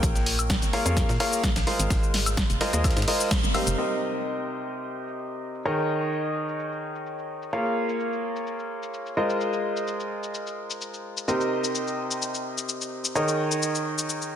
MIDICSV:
0, 0, Header, 1, 4, 480
1, 0, Start_track
1, 0, Key_signature, -4, "major"
1, 0, Tempo, 468750
1, 31, Time_signature, 4, 2, 24, 8
1, 14702, End_track
2, 0, Start_track
2, 0, Title_t, "Upright piano"
2, 0, Program_c, 0, 0
2, 0, Note_on_c, 0, 58, 76
2, 0, Note_on_c, 0, 65, 70
2, 0, Note_on_c, 0, 68, 72
2, 0, Note_on_c, 0, 70, 72
2, 0, Note_on_c, 0, 73, 71
2, 0, Note_on_c, 0, 79, 85
2, 723, Note_off_c, 0, 65, 0
2, 724, Note_off_c, 0, 58, 0
2, 724, Note_off_c, 0, 68, 0
2, 724, Note_off_c, 0, 70, 0
2, 724, Note_off_c, 0, 73, 0
2, 724, Note_off_c, 0, 79, 0
2, 751, Note_on_c, 0, 58, 97
2, 751, Note_on_c, 0, 65, 85
2, 751, Note_on_c, 0, 68, 89
2, 751, Note_on_c, 0, 70, 86
2, 751, Note_on_c, 0, 77, 103
2, 752, Note_on_c, 0, 73, 84
2, 859, Note_off_c, 0, 58, 0
2, 859, Note_off_c, 0, 65, 0
2, 859, Note_off_c, 0, 68, 0
2, 859, Note_off_c, 0, 70, 0
2, 859, Note_off_c, 0, 73, 0
2, 859, Note_off_c, 0, 77, 0
2, 878, Note_on_c, 0, 58, 93
2, 878, Note_on_c, 0, 65, 86
2, 878, Note_on_c, 0, 68, 86
2, 878, Note_on_c, 0, 70, 85
2, 878, Note_on_c, 0, 73, 86
2, 878, Note_on_c, 0, 77, 106
2, 1110, Note_off_c, 0, 58, 0
2, 1110, Note_off_c, 0, 65, 0
2, 1110, Note_off_c, 0, 68, 0
2, 1110, Note_off_c, 0, 70, 0
2, 1110, Note_off_c, 0, 73, 0
2, 1110, Note_off_c, 0, 77, 0
2, 1229, Note_on_c, 0, 70, 91
2, 1230, Note_on_c, 0, 58, 97
2, 1230, Note_on_c, 0, 65, 89
2, 1230, Note_on_c, 0, 68, 91
2, 1230, Note_on_c, 0, 73, 92
2, 1230, Note_on_c, 0, 77, 109
2, 1463, Note_off_c, 0, 58, 0
2, 1463, Note_off_c, 0, 65, 0
2, 1463, Note_off_c, 0, 68, 0
2, 1463, Note_off_c, 0, 70, 0
2, 1463, Note_off_c, 0, 73, 0
2, 1463, Note_off_c, 0, 77, 0
2, 1710, Note_on_c, 0, 56, 78
2, 1710, Note_on_c, 0, 65, 70
2, 1710, Note_on_c, 0, 68, 70
2, 1710, Note_on_c, 0, 70, 71
2, 1710, Note_on_c, 0, 72, 72
2, 1710, Note_on_c, 0, 77, 84
2, 2643, Note_off_c, 0, 56, 0
2, 2643, Note_off_c, 0, 65, 0
2, 2643, Note_off_c, 0, 68, 0
2, 2643, Note_off_c, 0, 70, 0
2, 2643, Note_off_c, 0, 72, 0
2, 2643, Note_off_c, 0, 77, 0
2, 2670, Note_on_c, 0, 70, 85
2, 2671, Note_on_c, 0, 56, 95
2, 2671, Note_on_c, 0, 65, 88
2, 2671, Note_on_c, 0, 68, 86
2, 2671, Note_on_c, 0, 72, 85
2, 2671, Note_on_c, 0, 75, 104
2, 2779, Note_off_c, 0, 56, 0
2, 2779, Note_off_c, 0, 65, 0
2, 2779, Note_off_c, 0, 68, 0
2, 2779, Note_off_c, 0, 70, 0
2, 2779, Note_off_c, 0, 72, 0
2, 2779, Note_off_c, 0, 75, 0
2, 2798, Note_on_c, 0, 56, 92
2, 2798, Note_on_c, 0, 65, 86
2, 2798, Note_on_c, 0, 70, 86
2, 2798, Note_on_c, 0, 72, 85
2, 2798, Note_on_c, 0, 75, 106
2, 2799, Note_on_c, 0, 68, 87
2, 3030, Note_off_c, 0, 56, 0
2, 3030, Note_off_c, 0, 65, 0
2, 3030, Note_off_c, 0, 68, 0
2, 3030, Note_off_c, 0, 70, 0
2, 3030, Note_off_c, 0, 72, 0
2, 3030, Note_off_c, 0, 75, 0
2, 3151, Note_on_c, 0, 56, 98
2, 3151, Note_on_c, 0, 65, 89
2, 3151, Note_on_c, 0, 68, 89
2, 3151, Note_on_c, 0, 70, 91
2, 3151, Note_on_c, 0, 72, 91
2, 3151, Note_on_c, 0, 75, 107
2, 3384, Note_off_c, 0, 56, 0
2, 3384, Note_off_c, 0, 65, 0
2, 3384, Note_off_c, 0, 68, 0
2, 3384, Note_off_c, 0, 70, 0
2, 3384, Note_off_c, 0, 72, 0
2, 3384, Note_off_c, 0, 75, 0
2, 3631, Note_on_c, 0, 48, 76
2, 3631, Note_on_c, 0, 67, 72
2, 3631, Note_on_c, 0, 70, 71
2, 3631, Note_on_c, 0, 72, 72
2, 3631, Note_on_c, 0, 77, 86
2, 3632, Note_on_c, 0, 63, 71
2, 3856, Note_off_c, 0, 48, 0
2, 3856, Note_off_c, 0, 63, 0
2, 3856, Note_off_c, 0, 67, 0
2, 3856, Note_off_c, 0, 70, 0
2, 3856, Note_off_c, 0, 72, 0
2, 3871, Note_on_c, 0, 48, 70
2, 3871, Note_on_c, 0, 70, 66
2, 3871, Note_on_c, 0, 72, 66
2, 3872, Note_on_c, 0, 63, 66
2, 3872, Note_on_c, 0, 67, 65
2, 3872, Note_on_c, 0, 75, 80
2, 4111, Note_off_c, 0, 77, 0
2, 5764, Note_off_c, 0, 48, 0
2, 5764, Note_off_c, 0, 63, 0
2, 5764, Note_off_c, 0, 67, 0
2, 5764, Note_off_c, 0, 70, 0
2, 5764, Note_off_c, 0, 72, 0
2, 5764, Note_off_c, 0, 75, 0
2, 5790, Note_on_c, 0, 51, 74
2, 5790, Note_on_c, 0, 63, 66
2, 5790, Note_on_c, 0, 68, 68
2, 5790, Note_on_c, 0, 73, 68
2, 5791, Note_on_c, 0, 70, 69
2, 5791, Note_on_c, 0, 75, 79
2, 7683, Note_off_c, 0, 51, 0
2, 7683, Note_off_c, 0, 63, 0
2, 7683, Note_off_c, 0, 68, 0
2, 7683, Note_off_c, 0, 73, 0
2, 7684, Note_off_c, 0, 70, 0
2, 7684, Note_off_c, 0, 75, 0
2, 7709, Note_on_c, 0, 58, 74
2, 7709, Note_on_c, 0, 68, 66
2, 7709, Note_on_c, 0, 70, 65
2, 7709, Note_on_c, 0, 73, 66
2, 7709, Note_on_c, 0, 77, 79
2, 7710, Note_on_c, 0, 65, 68
2, 9363, Note_off_c, 0, 58, 0
2, 9363, Note_off_c, 0, 65, 0
2, 9363, Note_off_c, 0, 68, 0
2, 9363, Note_off_c, 0, 70, 0
2, 9363, Note_off_c, 0, 73, 0
2, 9363, Note_off_c, 0, 77, 0
2, 9390, Note_on_c, 0, 56, 74
2, 9390, Note_on_c, 0, 65, 67
2, 9390, Note_on_c, 0, 68, 66
2, 9390, Note_on_c, 0, 70, 67
2, 9390, Note_on_c, 0, 72, 68
2, 9390, Note_on_c, 0, 75, 79
2, 11523, Note_off_c, 0, 56, 0
2, 11523, Note_off_c, 0, 65, 0
2, 11523, Note_off_c, 0, 68, 0
2, 11523, Note_off_c, 0, 70, 0
2, 11523, Note_off_c, 0, 72, 0
2, 11523, Note_off_c, 0, 75, 0
2, 11550, Note_on_c, 0, 63, 67
2, 11550, Note_on_c, 0, 67, 67
2, 11550, Note_on_c, 0, 70, 68
2, 11550, Note_on_c, 0, 72, 68
2, 11551, Note_on_c, 0, 48, 73
2, 11551, Note_on_c, 0, 75, 81
2, 13443, Note_off_c, 0, 48, 0
2, 13443, Note_off_c, 0, 63, 0
2, 13443, Note_off_c, 0, 67, 0
2, 13443, Note_off_c, 0, 70, 0
2, 13443, Note_off_c, 0, 72, 0
2, 13443, Note_off_c, 0, 75, 0
2, 13470, Note_on_c, 0, 51, 76
2, 13470, Note_on_c, 0, 63, 66
2, 13470, Note_on_c, 0, 68, 66
2, 13470, Note_on_c, 0, 70, 67
2, 13470, Note_on_c, 0, 73, 69
2, 13470, Note_on_c, 0, 75, 84
2, 14702, Note_off_c, 0, 51, 0
2, 14702, Note_off_c, 0, 63, 0
2, 14702, Note_off_c, 0, 68, 0
2, 14702, Note_off_c, 0, 70, 0
2, 14702, Note_off_c, 0, 73, 0
2, 14702, Note_off_c, 0, 75, 0
2, 14702, End_track
3, 0, Start_track
3, 0, Title_t, "FM bass"
3, 0, Program_c, 1, 39
3, 29, Note_on_c, 1, 34, 101
3, 598, Note_off_c, 1, 34, 0
3, 638, Note_on_c, 1, 32, 89
3, 729, Note_off_c, 1, 32, 0
3, 877, Note_on_c, 1, 41, 88
3, 1069, Note_off_c, 1, 41, 0
3, 1117, Note_on_c, 1, 46, 90
3, 1208, Note_off_c, 1, 46, 0
3, 1597, Note_on_c, 1, 34, 101
3, 1688, Note_off_c, 1, 34, 0
3, 1837, Note_on_c, 1, 32, 93
3, 1928, Note_off_c, 1, 32, 0
3, 1950, Note_on_c, 1, 32, 98
3, 2518, Note_off_c, 1, 32, 0
3, 2559, Note_on_c, 1, 29, 88
3, 2649, Note_off_c, 1, 29, 0
3, 2799, Note_on_c, 1, 39, 86
3, 2989, Note_off_c, 1, 39, 0
3, 3038, Note_on_c, 1, 44, 92
3, 3129, Note_off_c, 1, 44, 0
3, 3518, Note_on_c, 1, 32, 100
3, 3609, Note_off_c, 1, 32, 0
3, 3758, Note_on_c, 1, 29, 94
3, 3849, Note_off_c, 1, 29, 0
3, 14702, End_track
4, 0, Start_track
4, 0, Title_t, "Drums"
4, 30, Note_on_c, 9, 36, 110
4, 30, Note_on_c, 9, 42, 66
4, 31, Note_off_c, 9, 42, 0
4, 31, Note_on_c, 9, 42, 90
4, 34, Note_on_c, 9, 82, 59
4, 132, Note_off_c, 9, 36, 0
4, 134, Note_off_c, 9, 42, 0
4, 137, Note_off_c, 9, 82, 0
4, 159, Note_on_c, 9, 38, 47
4, 162, Note_on_c, 9, 82, 36
4, 262, Note_off_c, 9, 38, 0
4, 265, Note_off_c, 9, 82, 0
4, 270, Note_on_c, 9, 46, 99
4, 271, Note_on_c, 9, 38, 47
4, 271, Note_on_c, 9, 42, 70
4, 373, Note_off_c, 9, 38, 0
4, 373, Note_off_c, 9, 42, 0
4, 373, Note_off_c, 9, 46, 0
4, 398, Note_on_c, 9, 42, 55
4, 398, Note_on_c, 9, 76, 61
4, 402, Note_on_c, 9, 82, 71
4, 500, Note_off_c, 9, 42, 0
4, 500, Note_off_c, 9, 76, 0
4, 504, Note_off_c, 9, 82, 0
4, 510, Note_on_c, 9, 36, 97
4, 510, Note_on_c, 9, 42, 68
4, 511, Note_off_c, 9, 42, 0
4, 511, Note_on_c, 9, 38, 118
4, 511, Note_on_c, 9, 42, 88
4, 513, Note_off_c, 9, 38, 0
4, 513, Note_on_c, 9, 38, 123
4, 514, Note_on_c, 9, 82, 61
4, 612, Note_off_c, 9, 36, 0
4, 613, Note_off_c, 9, 42, 0
4, 616, Note_off_c, 9, 38, 0
4, 617, Note_off_c, 9, 82, 0
4, 638, Note_on_c, 9, 38, 39
4, 638, Note_on_c, 9, 42, 54
4, 642, Note_on_c, 9, 82, 35
4, 741, Note_off_c, 9, 38, 0
4, 741, Note_off_c, 9, 42, 0
4, 745, Note_off_c, 9, 82, 0
4, 750, Note_on_c, 9, 46, 87
4, 751, Note_on_c, 9, 42, 67
4, 852, Note_off_c, 9, 46, 0
4, 854, Note_off_c, 9, 42, 0
4, 878, Note_on_c, 9, 42, 53
4, 882, Note_on_c, 9, 82, 69
4, 980, Note_off_c, 9, 42, 0
4, 984, Note_off_c, 9, 82, 0
4, 990, Note_on_c, 9, 36, 112
4, 990, Note_on_c, 9, 42, 69
4, 991, Note_off_c, 9, 42, 0
4, 991, Note_on_c, 9, 42, 92
4, 993, Note_on_c, 9, 38, 62
4, 994, Note_on_c, 9, 82, 60
4, 1092, Note_off_c, 9, 36, 0
4, 1093, Note_off_c, 9, 42, 0
4, 1096, Note_off_c, 9, 38, 0
4, 1097, Note_off_c, 9, 82, 0
4, 1118, Note_on_c, 9, 38, 53
4, 1122, Note_on_c, 9, 82, 35
4, 1221, Note_off_c, 9, 38, 0
4, 1224, Note_off_c, 9, 82, 0
4, 1230, Note_on_c, 9, 46, 101
4, 1231, Note_on_c, 9, 38, 105
4, 1231, Note_on_c, 9, 42, 80
4, 1332, Note_off_c, 9, 46, 0
4, 1333, Note_off_c, 9, 38, 0
4, 1333, Note_off_c, 9, 42, 0
4, 1361, Note_on_c, 9, 82, 68
4, 1464, Note_off_c, 9, 82, 0
4, 1470, Note_on_c, 9, 36, 100
4, 1470, Note_on_c, 9, 42, 67
4, 1471, Note_off_c, 9, 42, 0
4, 1471, Note_on_c, 9, 42, 63
4, 1473, Note_on_c, 9, 38, 112
4, 1474, Note_on_c, 9, 82, 59
4, 1572, Note_off_c, 9, 36, 0
4, 1573, Note_off_c, 9, 42, 0
4, 1576, Note_off_c, 9, 38, 0
4, 1576, Note_off_c, 9, 82, 0
4, 1598, Note_on_c, 9, 38, 106
4, 1598, Note_on_c, 9, 42, 80
4, 1602, Note_on_c, 9, 82, 36
4, 1701, Note_off_c, 9, 38, 0
4, 1701, Note_off_c, 9, 42, 0
4, 1704, Note_off_c, 9, 82, 0
4, 1710, Note_on_c, 9, 46, 89
4, 1812, Note_off_c, 9, 46, 0
4, 1838, Note_on_c, 9, 42, 56
4, 1839, Note_off_c, 9, 42, 0
4, 1839, Note_on_c, 9, 42, 60
4, 1842, Note_on_c, 9, 82, 72
4, 1941, Note_off_c, 9, 42, 0
4, 1945, Note_off_c, 9, 82, 0
4, 1950, Note_on_c, 9, 36, 113
4, 1951, Note_on_c, 9, 38, 108
4, 1951, Note_on_c, 9, 42, 82
4, 1955, Note_on_c, 9, 82, 57
4, 2052, Note_off_c, 9, 36, 0
4, 2054, Note_off_c, 9, 38, 0
4, 2054, Note_off_c, 9, 42, 0
4, 2057, Note_off_c, 9, 82, 0
4, 2083, Note_on_c, 9, 82, 34
4, 2185, Note_off_c, 9, 82, 0
4, 2191, Note_on_c, 9, 42, 63
4, 2191, Note_on_c, 9, 46, 101
4, 2194, Note_on_c, 9, 38, 60
4, 2293, Note_off_c, 9, 46, 0
4, 2294, Note_off_c, 9, 42, 0
4, 2296, Note_off_c, 9, 38, 0
4, 2318, Note_on_c, 9, 42, 57
4, 2318, Note_on_c, 9, 76, 61
4, 2319, Note_on_c, 9, 38, 42
4, 2322, Note_on_c, 9, 82, 74
4, 2420, Note_off_c, 9, 42, 0
4, 2420, Note_off_c, 9, 76, 0
4, 2421, Note_off_c, 9, 38, 0
4, 2424, Note_off_c, 9, 82, 0
4, 2430, Note_on_c, 9, 36, 99
4, 2431, Note_on_c, 9, 38, 118
4, 2431, Note_on_c, 9, 42, 90
4, 2434, Note_off_c, 9, 38, 0
4, 2434, Note_on_c, 9, 38, 124
4, 2435, Note_on_c, 9, 82, 61
4, 2532, Note_off_c, 9, 36, 0
4, 2534, Note_off_c, 9, 42, 0
4, 2536, Note_off_c, 9, 38, 0
4, 2537, Note_off_c, 9, 82, 0
4, 2559, Note_on_c, 9, 42, 57
4, 2563, Note_on_c, 9, 82, 35
4, 2661, Note_off_c, 9, 42, 0
4, 2665, Note_off_c, 9, 82, 0
4, 2670, Note_on_c, 9, 46, 89
4, 2671, Note_on_c, 9, 38, 104
4, 2671, Note_on_c, 9, 42, 80
4, 2772, Note_off_c, 9, 46, 0
4, 2774, Note_off_c, 9, 38, 0
4, 2774, Note_off_c, 9, 42, 0
4, 2798, Note_on_c, 9, 38, 35
4, 2798, Note_on_c, 9, 42, 55
4, 2802, Note_on_c, 9, 82, 71
4, 2900, Note_off_c, 9, 42, 0
4, 2901, Note_off_c, 9, 38, 0
4, 2904, Note_off_c, 9, 82, 0
4, 2911, Note_on_c, 9, 36, 111
4, 2911, Note_on_c, 9, 42, 69
4, 2911, Note_on_c, 9, 76, 63
4, 2912, Note_off_c, 9, 42, 0
4, 2912, Note_on_c, 9, 38, 91
4, 2912, Note_on_c, 9, 42, 69
4, 2915, Note_on_c, 9, 82, 60
4, 2975, Note_off_c, 9, 38, 0
4, 2975, Note_off_c, 9, 42, 0
4, 2975, Note_on_c, 9, 38, 91
4, 2975, Note_on_c, 9, 42, 70
4, 3013, Note_off_c, 9, 36, 0
4, 3013, Note_off_c, 9, 76, 0
4, 3017, Note_off_c, 9, 82, 0
4, 3038, Note_off_c, 9, 38, 0
4, 3038, Note_off_c, 9, 42, 0
4, 3038, Note_on_c, 9, 38, 89
4, 3038, Note_on_c, 9, 42, 69
4, 3043, Note_on_c, 9, 82, 34
4, 3094, Note_off_c, 9, 38, 0
4, 3094, Note_off_c, 9, 42, 0
4, 3094, Note_on_c, 9, 38, 89
4, 3094, Note_on_c, 9, 42, 69
4, 3145, Note_off_c, 9, 82, 0
4, 3151, Note_off_c, 9, 42, 0
4, 3151, Note_on_c, 9, 42, 83
4, 3151, Note_on_c, 9, 46, 104
4, 3197, Note_off_c, 9, 38, 0
4, 3253, Note_off_c, 9, 42, 0
4, 3253, Note_off_c, 9, 46, 0
4, 3278, Note_on_c, 9, 38, 46
4, 3282, Note_on_c, 9, 82, 70
4, 3381, Note_off_c, 9, 38, 0
4, 3385, Note_off_c, 9, 82, 0
4, 3390, Note_on_c, 9, 36, 103
4, 3390, Note_on_c, 9, 38, 119
4, 3390, Note_on_c, 9, 42, 89
4, 3393, Note_off_c, 9, 38, 0
4, 3393, Note_on_c, 9, 38, 122
4, 3394, Note_on_c, 9, 82, 56
4, 3493, Note_off_c, 9, 36, 0
4, 3493, Note_off_c, 9, 42, 0
4, 3495, Note_off_c, 9, 38, 0
4, 3496, Note_off_c, 9, 82, 0
4, 3522, Note_on_c, 9, 82, 36
4, 3624, Note_off_c, 9, 82, 0
4, 3630, Note_on_c, 9, 46, 90
4, 3630, Note_on_c, 9, 76, 64
4, 3631, Note_on_c, 9, 42, 69
4, 3732, Note_off_c, 9, 46, 0
4, 3732, Note_off_c, 9, 76, 0
4, 3734, Note_off_c, 9, 42, 0
4, 3757, Note_on_c, 9, 42, 57
4, 3761, Note_on_c, 9, 82, 70
4, 3859, Note_off_c, 9, 42, 0
4, 3864, Note_off_c, 9, 82, 0
4, 3874, Note_on_c, 9, 82, 50
4, 3976, Note_off_c, 9, 82, 0
4, 4002, Note_on_c, 9, 82, 31
4, 4105, Note_off_c, 9, 82, 0
4, 4243, Note_on_c, 9, 82, 64
4, 4345, Note_off_c, 9, 82, 0
4, 4355, Note_on_c, 9, 82, 53
4, 4458, Note_off_c, 9, 82, 0
4, 4483, Note_on_c, 9, 82, 31
4, 4585, Note_off_c, 9, 82, 0
4, 4722, Note_on_c, 9, 82, 59
4, 4825, Note_off_c, 9, 82, 0
4, 4835, Note_on_c, 9, 82, 52
4, 4937, Note_off_c, 9, 82, 0
4, 4963, Note_on_c, 9, 82, 31
4, 5065, Note_off_c, 9, 82, 0
4, 5202, Note_on_c, 9, 82, 62
4, 5304, Note_off_c, 9, 82, 0
4, 5315, Note_on_c, 9, 82, 53
4, 5417, Note_off_c, 9, 82, 0
4, 5442, Note_on_c, 9, 82, 32
4, 5545, Note_off_c, 9, 82, 0
4, 5681, Note_on_c, 9, 82, 64
4, 5784, Note_off_c, 9, 82, 0
4, 5794, Note_on_c, 9, 82, 48
4, 5896, Note_off_c, 9, 82, 0
4, 5922, Note_on_c, 9, 82, 30
4, 6024, Note_off_c, 9, 82, 0
4, 6161, Note_on_c, 9, 82, 61
4, 6264, Note_off_c, 9, 82, 0
4, 6274, Note_on_c, 9, 82, 52
4, 6377, Note_off_c, 9, 82, 0
4, 6402, Note_on_c, 9, 82, 30
4, 6504, Note_off_c, 9, 82, 0
4, 6641, Note_on_c, 9, 82, 59
4, 6744, Note_off_c, 9, 82, 0
4, 6754, Note_on_c, 9, 82, 52
4, 6856, Note_off_c, 9, 82, 0
4, 6882, Note_on_c, 9, 82, 30
4, 6984, Note_off_c, 9, 82, 0
4, 7121, Note_on_c, 9, 82, 60
4, 7224, Note_off_c, 9, 82, 0
4, 7234, Note_on_c, 9, 82, 49
4, 7336, Note_off_c, 9, 82, 0
4, 7362, Note_on_c, 9, 82, 31
4, 7464, Note_off_c, 9, 82, 0
4, 7602, Note_on_c, 9, 82, 62
4, 7704, Note_off_c, 9, 82, 0
4, 7715, Note_on_c, 9, 82, 48
4, 7817, Note_off_c, 9, 82, 0
4, 7842, Note_on_c, 9, 82, 29
4, 7944, Note_off_c, 9, 82, 0
4, 8081, Note_on_c, 9, 82, 62
4, 8183, Note_off_c, 9, 82, 0
4, 8194, Note_on_c, 9, 82, 51
4, 8296, Note_off_c, 9, 82, 0
4, 8322, Note_on_c, 9, 82, 30
4, 8424, Note_off_c, 9, 82, 0
4, 8561, Note_on_c, 9, 82, 59
4, 8664, Note_off_c, 9, 82, 0
4, 8673, Note_on_c, 9, 82, 50
4, 8776, Note_off_c, 9, 82, 0
4, 8801, Note_on_c, 9, 82, 29
4, 8903, Note_off_c, 9, 82, 0
4, 9041, Note_on_c, 9, 82, 61
4, 9143, Note_off_c, 9, 82, 0
4, 9153, Note_on_c, 9, 82, 51
4, 9255, Note_off_c, 9, 82, 0
4, 9281, Note_on_c, 9, 82, 30
4, 9383, Note_off_c, 9, 82, 0
4, 9520, Note_on_c, 9, 82, 61
4, 9623, Note_off_c, 9, 82, 0
4, 9634, Note_on_c, 9, 82, 49
4, 9736, Note_off_c, 9, 82, 0
4, 9761, Note_on_c, 9, 82, 31
4, 9863, Note_off_c, 9, 82, 0
4, 10001, Note_on_c, 9, 82, 62
4, 10103, Note_off_c, 9, 82, 0
4, 10113, Note_on_c, 9, 82, 53
4, 10215, Note_off_c, 9, 82, 0
4, 10241, Note_on_c, 9, 82, 30
4, 10343, Note_off_c, 9, 82, 0
4, 10481, Note_on_c, 9, 82, 58
4, 10583, Note_off_c, 9, 82, 0
4, 10593, Note_on_c, 9, 82, 53
4, 10695, Note_off_c, 9, 82, 0
4, 10721, Note_on_c, 9, 82, 30
4, 10823, Note_off_c, 9, 82, 0
4, 10961, Note_on_c, 9, 82, 62
4, 11063, Note_off_c, 9, 82, 0
4, 11074, Note_on_c, 9, 82, 49
4, 11176, Note_off_c, 9, 82, 0
4, 11201, Note_on_c, 9, 82, 31
4, 11304, Note_off_c, 9, 82, 0
4, 11441, Note_on_c, 9, 82, 62
4, 11544, Note_off_c, 9, 82, 0
4, 11554, Note_on_c, 9, 82, 52
4, 11657, Note_off_c, 9, 82, 0
4, 11681, Note_on_c, 9, 82, 32
4, 11784, Note_off_c, 9, 82, 0
4, 11921, Note_on_c, 9, 82, 65
4, 12023, Note_off_c, 9, 82, 0
4, 12034, Note_on_c, 9, 82, 55
4, 12136, Note_off_c, 9, 82, 0
4, 12161, Note_on_c, 9, 82, 31
4, 12264, Note_off_c, 9, 82, 0
4, 12401, Note_on_c, 9, 82, 63
4, 12504, Note_off_c, 9, 82, 0
4, 12514, Note_on_c, 9, 82, 54
4, 12617, Note_off_c, 9, 82, 0
4, 12641, Note_on_c, 9, 82, 31
4, 12744, Note_off_c, 9, 82, 0
4, 12881, Note_on_c, 9, 82, 64
4, 12984, Note_off_c, 9, 82, 0
4, 12993, Note_on_c, 9, 82, 52
4, 13096, Note_off_c, 9, 82, 0
4, 13121, Note_on_c, 9, 82, 33
4, 13224, Note_off_c, 9, 82, 0
4, 13361, Note_on_c, 9, 82, 65
4, 13464, Note_off_c, 9, 82, 0
4, 13473, Note_on_c, 9, 82, 53
4, 13576, Note_off_c, 9, 82, 0
4, 13601, Note_on_c, 9, 82, 32
4, 13703, Note_off_c, 9, 82, 0
4, 13840, Note_on_c, 9, 82, 66
4, 13943, Note_off_c, 9, 82, 0
4, 13952, Note_on_c, 9, 82, 55
4, 14055, Note_off_c, 9, 82, 0
4, 14081, Note_on_c, 9, 82, 33
4, 14183, Note_off_c, 9, 82, 0
4, 14321, Note_on_c, 9, 82, 65
4, 14423, Note_off_c, 9, 82, 0
4, 14433, Note_on_c, 9, 82, 55
4, 14535, Note_off_c, 9, 82, 0
4, 14561, Note_on_c, 9, 82, 33
4, 14664, Note_off_c, 9, 82, 0
4, 14702, End_track
0, 0, End_of_file